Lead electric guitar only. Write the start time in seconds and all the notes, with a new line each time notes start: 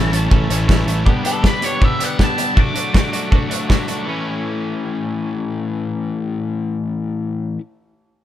Already playing: A5
1.27 A4
1.46 B4
1.64 C#5
1.85 E5
2.04 F#5
2.23 A5
2.60 D6